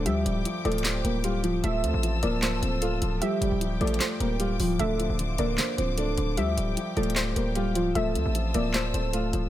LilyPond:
<<
  \new Staff \with { instrumentName = "String section" } { \time 4/4 \key bes \lydian \tempo 4 = 152 << { d'''1 | e'''1 | d'''1~ | d'''1~ |
d'''1 | e'''1 | } \\ { <g' g''>1 | <f' a''>1 | <g' g''>1 | <f' c''>1 |
<g' g''>1 | <f' a''>1 | } >> }
  \new Staff \with { instrumentName = "Synth pluck" } { \time 4/4 \key bes \lydian e''4. d''8 c''4 r4 | e''4. d''8 c''4 r4 | e''4. d''8 c''4 r4 | e''4. d''8 c''4 r4 |
e''4. d''8 c''4 r4 | e''4. d''8 c''4 r4 | }
  \new Staff \with { instrumentName = "Synth keys" } { \time 4/4 \key bes \lydian <g g'>4 r8 <a a'>4 <bes bes'>8 <g g'>8 <f f'>8 | <a a'>4 r8 <bes bes'>4 <c' c''>8 <a a'>4 | <g g'>4 r8 <a a'>4 <bes bes'>8 <g g'>8 <f f'>8 | <a a'>4 r8 <bes bes'>4 <c' c''>8 <a a'>4 |
<g g'>4 r8 <a a'>4 <bes bes'>8 <g g'>8 <f f'>8 | <a a'>4 r8 <bes bes'>4 <c' c''>8 <a a'>4 | }
  \new Staff \with { instrumentName = "Grand piano" } { \clef bass \time 4/4 \key bes \lydian f8 g8 f8 f8 f8 g8 f'8 f8 | f8 c'8 f8 f8 f8 a8 f'8 f8 | f8 g8 f8 f8 f8 g8 f'8 f8 | d8 f8 d8 d8 d8 f8 d'8 d8 |
f8 g8 f8 f8 f8 g8 f'8 f8 | f8 c'8 f8 f8 f8 a8 f'8 f8 | }
  \new Staff \with { instrumentName = "808-style bass" } { \clef bass \time 4/4 \key bes \lydian d,8 d,,8 r8 d,,4 d,,4. | d,,8 d,16 a,,8. d,,4 d,,4 d,,8 | r8 f,,16 d,,8. a,,8 r8 d,,4 d,,8 | d,,8. d,,8. d,,8 r8 d,,4 d,,8 |
d,8 d,,8 r8 d,,4 d,,4. | d,,8 d,16 a,,8. d,,4 d,,4 d,,8 | }
  \new DrumStaff \with { instrumentName = "Drums" } \drummode { \time 4/4 hh8 hh8 \tuplet 3/2 { hh16 r16 r16 hh16 hh16 hh16 } <hc hh sn>8 hh8 hh8 hh8 | hh8 hh8 hh8 hh8 <hc hh sn>8 hh8 hh8 hh8 | hh8 hh8 \tuplet 3/2 { hh16 r16 r16 hh16 hh16 hh16 } <hc hh sn>8 hh8 hh8 hho8 | hh8 hh8 hh8 hh8 <hc hh sn>8 hh8 hh8 hh8 |
hh8 hh8 \tuplet 3/2 { hh16 r16 r16 hh16 hh16 hh16 } <hc hh sn>8 hh8 hh8 hh8 | hh8 hh8 hh8 hh8 <hc hh sn>8 hh8 hh8 hh8 | }
>>